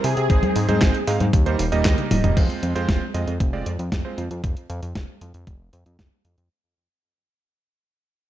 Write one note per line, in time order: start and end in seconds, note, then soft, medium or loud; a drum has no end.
0.04 0.16 C3 medium
0.04 1.03 G#4 loud
0.04 open hi-hat loud
0.17 0.29 C3 medium
0.17 closed hi-hat medium
0.30 0.41 G#1 loud
0.30 0.66 G#3 medium
0.30 0.66 C4 medium
0.30 0.66 D#4 medium
0.30 0.66 C5 medium
0.30 kick loud
0.30 closed hi-hat medium
0.43 closed hi-hat soft
0.43 high conga medium
0.56 0.67 G#2 loud
0.56 open hi-hat loud
0.69 0.80 G#2 medium
0.69 0.95 G#3 medium
0.69 0.95 C4 medium
0.69 0.95 D#4 medium
0.69 0.95 C5 loud
0.69 closed hi-hat medium
0.69 high conga medium
0.82 0.93 G#1 loud
0.82 kick loud
0.82 snare loud
0.82 clap medium
0.82 closed hi-hat medium
0.94 closed hi-hat soft
1.07 1.19 G#2 loud
1.07 1.24 G#3 medium
1.07 1.24 C4 medium
1.07 1.24 D#4 medium
1.07 1.24 F5 loud
1.07 open hi-hat loud
1.20 1.32 G#2 loud
1.20 closed hi-hat medium
1.20 high conga medium
1.33 1.56 D#2 medium
1.33 kick loud
1.33 closed hi-hat medium
1.46 1.63 G3 medium
1.46 1.63 A#3 medium
1.46 1.63 D#4 medium
1.46 1.63 C5 loud
1.46 closed hi-hat soft
1.59 1.71 D#1 loud
1.59 open hi-hat loud
1.72 1.84 D#1 medium
1.72 2.21 G3 medium
1.72 2.21 A#3 medium
1.72 2.21 D#4 medium
1.72 2.21 D#5 loud
1.72 closed hi-hat medium
1.85 1.97 D#2 loud
1.85 kick loud
1.85 snare loud
1.85 clap medium
1.85 closed hi-hat medium
1.98 closed hi-hat soft
1.98 high tom medium
2.11 2.22 D#1 medium
2.11 open hi-hat loud
2.11 mid tom medium
2.11 high conga medium
2.24 2.35 D#1 medium
2.24 2.35 G3 medium
2.24 2.35 A#3 medium
2.24 2.35 D#4 medium
2.24 2.35 D#5 medium
2.24 closed hi-hat medium
2.24 mid tom medium
2.37 2.48 F1 loud
2.37 2.72 G#3 medium
2.37 2.72 C4 medium
2.37 2.72 F4 medium
2.37 2.72 C5 medium
2.37 kick loud
2.37 closed hi-hat medium
2.37 crash medium
2.50 closed hi-hat soft
2.63 2.74 F2 loud
2.63 closed hi-hat medium
2.75 2.87 F2 medium
2.75 3.02 G#3 medium
2.75 3.02 C4 medium
2.75 3.02 F4 medium
2.75 3.02 C5 loud
2.75 closed hi-hat medium
2.89 3.00 F1 loud
2.89 kick loud
2.89 snare loud
2.89 closed hi-hat medium
3.14 3.26 F2 medium
3.14 3.31 G#3 medium
3.14 3.31 C4 medium
3.14 3.31 F4 medium
3.14 3.31 D#5 medium
3.14 closed hi-hat medium
3.27 3.39 F2 loud
3.27 closed hi-hat medium
3.40 3.63 F1 medium
3.40 kick loud
3.40 closed hi-hat medium
3.53 3.70 G#3 medium
3.53 3.70 C4 medium
3.53 3.70 F4 medium
3.53 3.70 D5 medium
3.66 3.78 F2 medium
3.66 closed hi-hat medium
3.79 3.91 F2 medium
3.79 closed hi-hat medium
3.92 4.04 F1 medium
3.92 kick loud
3.92 snare loud
3.92 closed hi-hat medium
4.05 4.21 G#3 medium
4.05 4.21 C4 medium
4.05 4.21 F4 medium
4.05 4.21 C5 medium
4.18 4.29 F2 medium
4.18 closed hi-hat medium
4.31 4.42 F2 medium
4.31 closed hi-hat medium
4.44 4.55 F1 medium
4.44 kick loud
4.44 closed hi-hat medium
4.57 closed hi-hat soft
4.70 4.81 F2 loud
4.70 closed hi-hat medium
4.82 4.94 F2 medium
4.82 closed hi-hat medium
4.95 5.07 F1 loud
4.95 kick loud
4.95 snare loud
4.95 closed hi-hat medium
5.21 5.33 F2 medium
5.21 closed hi-hat medium
5.34 5.46 F2 medium
5.34 closed hi-hat medium
5.47 5.70 F1 medium
5.47 kick loud
5.47 closed hi-hat medium
5.73 5.84 F2 medium
5.73 closed hi-hat medium
5.86 5.97 F2 medium
5.86 closed hi-hat soft
5.99 6.10 F1 medium
5.99 kick loud
5.99 snare loud
5.99 closed hi-hat medium
6.25 6.36 F2 medium
6.25 closed hi-hat medium
6.38 6.49 F2 medium
6.38 closed hi-hat medium